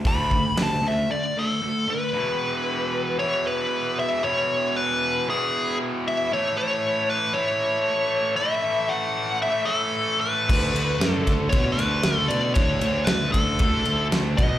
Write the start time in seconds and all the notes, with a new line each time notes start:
0.05 D2 D3 A3 D4 B5, kick, open hi-hat
0.31 D3 A3, kick
0.56 D2 D3 A3, snare, open hi-hat
0.62 A5
0.82 D2 D3 A3
0.88 E5
1.10 D3 A3 D5
1.37 D3 A3 A4
1.62 D3 A3
1.88 D3 A3 B4
2.13 E2 B2 E3
3.19 E2 B2 E3 C#5
3.47 B4
3.99 E5
4.23 E2 B2 E3 C#5
4.76 B4
5.28 E2 B2 E3 G#4
6.08 E5
6.32 A2 E3 A3 C#5
6.58 C#5
7.10 B4
7.33 A2 E3 C#5
7.38 A3
8.36 E5
8.41 A2 E3 A3
8.89 F#5
9.42 A2 E3 E5
9.47 A3
9.65 A4
10.21 B4
10.48 D2 D3 A3 D4, kick, crash
10.74 D2, ride
11.00 F#2, snare, ride
11.13 A4
11.27 D2, kick, snare, ride
11.49 D3 A3 C#5, kick, ride
11.54 B2 D4
11.72 B4
11.77 D2, ride
12.03 D2, snare, ride
12.17 A4
12.28 B2 D5, ride
12.54 D2 D3 A3 D4 C#5, kick, ride
12.81 D2, ride
13.04 D2 B4, snare, ride
13.32 D2 A4, kick, ride
13.59 D2 D3 A3 D4, kick, ride
13.85 D2, ride
14.11 D2, snare, ride
14.37 B1 B2 F#3 B3 D#5, kick, ride